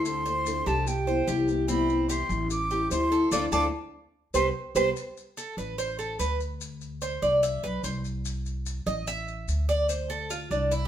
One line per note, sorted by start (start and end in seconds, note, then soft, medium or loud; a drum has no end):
0.00 0.60 D2 medium
0.00 0.24 A4 medium
0.05 0.25 D3 medium
0.05 0.25 A3 medium
0.05 0.25 C4 medium
0.05 0.25 F4 medium
0.05 0.69 C6 loud
0.05 maracas medium
0.26 0.45 A3 soft
0.26 0.46 C4 soft
0.26 0.45 F4 medium
0.26 0.65 C5 medium
0.26 maracas soft
0.46 0.86 D3 medium
0.46 0.86 A3 medium
0.46 0.87 C4 medium
0.46 0.87 F4 medium
0.46 maracas medium
0.66 1.24 C2 loud
0.66 1.06 G4 medium
0.66 0.89 A5 medium
0.66 maracas soft
0.87 1.49 G5 medium
0.87 muted nylon-string guitar stroke medium
0.87 maracas medium
1.07 1.27 G3 soft
1.07 1.27 B3 soft
1.07 1.27 E4 medium
1.07 1.27 C5 medium
1.07 maracas soft
1.27 2.24 C2 loud
1.27 1.47 C3 medium
1.27 1.48 E3 medium
1.27 1.48 G3 medium
1.27 1.48 B3 medium
1.27 1.47 E4 medium
1.27 1.67 G4 medium
1.27 maracas medium
1.48 1.68 G3 soft
1.48 1.68 B3 soft
1.48 1.68 E4 soft
1.48 maracas soft
1.68 1.88 C3 medium
1.68 1.88 E3 medium
1.68 1.89 G3 medium
1.68 1.88 B3 medium
1.68 2.08 C4 medium
1.68 1.87 E4 medium
1.68 2.07 B5 loud
1.68 maracas medium
1.89 2.09 G3 soft
1.89 2.09 B3 soft
1.89 2.08 E4 medium
1.89 maracas soft
2.09 2.49 C3 medium
2.09 2.49 E3 medium
2.09 2.49 G3 medium
2.09 2.50 B3 medium
2.09 2.50 E4 medium
2.09 2.29 G4 medium
2.09 2.48 C6 medium
2.09 maracas medium
2.29 2.87 A1 loud
2.29 maracas soft
2.50 2.89 D6 medium
2.50 muted nylon-string guitar stroke medium
2.50 maracas medium
2.71 2.90 G3 soft
2.71 2.91 C4 soft
2.71 2.90 E4 soft
2.71 2.91 G4 medium
2.71 maracas soft
2.91 3.29 D2 medium
2.91 3.11 E3 medium
2.91 3.11 G3 medium
2.91 3.11 C4 medium
2.91 3.10 E4 medium
2.91 3.11 C5 medium
2.91 3.30 C6 loud
2.91 maracas medium
3.11 3.32 G3 soft
3.11 3.31 C4 soft
3.11 3.31 E4 soft
3.11 3.31 A4 medium
3.11 maracas soft
3.31 3.47 D2 medium
3.31 3.45 A3 loud
3.31 3.45 C4 medium
3.31 3.45 D4 medium
3.31 3.45 D4 loud
3.31 3.45 F4 medium
3.31 3.45 A4 medium
3.31 3.45 D6 loud
3.31 maracas loud
3.52 3.68 D2 loud
3.52 3.66 A3 loud
3.52 3.66 C4 loud
3.52 3.66 D4 medium
3.52 3.66 D4 loud
3.52 3.66 F4 medium
3.52 3.66 A4 loud
3.52 3.66 D6 loud
3.52 maracas loud
4.34 4.49 C2 medium
4.34 4.48 G3 medium
4.34 4.48 B3 loud
4.34 4.48 C4 loud
4.34 4.48 G4 medium
4.34 4.48 B4 loud
4.34 4.48 C5 medium
4.34 4.48 C6 medium
4.34 maracas loud
4.75 4.91 C2 medium
4.75 4.88 G3 medium
4.75 4.89 B3 medium
4.75 4.88 C4 medium
4.75 4.89 G4 medium
4.75 4.89 B4 medium
4.75 4.89 C5 loud
4.75 4.89 C6 loud
4.75 maracas loud
4.96 maracas medium
5.17 maracas soft
5.37 5.57 A4 medium
5.37 maracas medium
5.57 6.15 A1 medium
5.57 5.78 B4 medium
5.57 maracas soft
5.78 5.98 C5 loud
5.78 maracas medium
5.99 6.19 A4 medium
5.99 maracas soft
6.19 7.16 D2 medium
6.19 6.39 B4 medium
6.19 maracas medium
6.40 maracas soft
6.61 maracas medium
6.81 maracas soft
7.02 7.22 C5 medium
7.02 maracas medium
7.22 7.60 C2 loud
7.22 7.42 D5 medium
7.22 maracas soft
7.43 7.63 E5 loud
7.43 maracas medium
7.63 7.82 B1 medium
7.63 7.83 B4 medium
7.63 maracas soft
7.83 8.80 C2 medium
7.83 7.96 C5 medium
7.83 maracas medium
8.05 maracas soft
8.25 maracas medium
8.46 maracas soft
8.66 maracas medium
8.86 9.44 A1 loud
8.86 9.07 D#5 medium
8.86 maracas soft
9.07 9.65 E5 loud
9.07 maracas medium
9.28 maracas soft
9.48 10.45 D2 medium
9.48 maracas medium
9.69 9.89 D5 loud
9.69 maracas soft
9.89 10.09 C5 medium
9.89 maracas medium
10.10 10.30 A4 medium
10.10 maracas soft
10.30 10.51 F4 medium
10.30 maracas medium
10.51 10.88 C2 loud
10.51 10.71 D4 medium
10.51 maracas soft
10.71 10.85 E4 medium
10.71 maracas medium